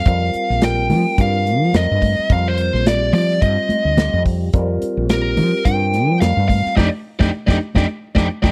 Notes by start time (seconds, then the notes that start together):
0.05 F2 G3 C4 F4 A#4 F5, kick, closed hi-hat, muted conga
0.34 muted fretless electric bass stroke, closed hi-hat
0.50 A#1, snare
0.62 G3 C4 F4 A#4 G5, snare, closed hi-hat
0.90 F3, snare, open hi-hat, high conga
1.17 G2 G3 C4 F4 A#4 F5, kick, closed hi-hat, muted conga
1.45 closed hi-hat, muted conga
1.62 F3
1.73 F2 G3 C4 F4 A#4 D#5, snare, closed hi-hat, high conga
1.91 G2
2.02 kick, open hi-hat, high conga
2.19 muted fretless electric bass stroke
2.30 F2 G3 C4 F4 A#4 F5, kick, closed hi-hat, muted conga
2.48 C5
2.58 closed hi-hat
2.74 A#1, snare
2.86 G3 C4 F4 G4 D5, snare, closed hi-hat
3.03 snare
3.13 F3 D5, open hi-hat, high conga
3.30 snare
3.42 G2 G3 C4 F4 C5 D#5, kick, closed hi-hat, muted conga
3.69 muted fretless electric bass stroke, closed hi-hat, muted conga, high conga
3.85 D2
3.97 G3 C4 F4 G4, snare, closed hi-hat, high conga, low conga
4.13 F2
4.26 kick, open hi-hat
4.53 F2 G3 C4 F4 A#4, kick, closed hi-hat, muted conga
4.82 muted fretless electric bass stroke, closed hi-hat
4.97 A#1
5.09 G3 C4 F4 G4 A#4, snare, closed hi-hat, muted conga
5.37 F3, open hi-hat, high conga
5.65 G2 G3 C4 F4 A#4 G5, kick, closed hi-hat, muted conga
5.93 snare, closed hi-hat, muted conga
6.08 F3
6.21 F2 G3 C4 F4 A#4 F5, snare, closed hi-hat, high conga
6.37 G2
6.48 F5, kick, open hi-hat, high conga
6.66 muted fretless electric bass stroke, snare
6.76 F2 D4 D#4 G4 D5 D#5 G5, kick, snare, high conga
7.20 F2 D4 D#4 G4 D5 D#5 G5, kick, snare, high conga
7.47 F2 D4 D#4 G4 D5 D#5 G5, kick, snare, high conga
7.75 F2 D4 D#4 G4 D5 D#5 G5, kick, snare, high conga
8.15 F2 D4 D#4 G4 D5 D#5 G5, kick, snare, high conga
8.42 F2 D4 D#4 G4 D5 D#5 G5, kick, snare, high conga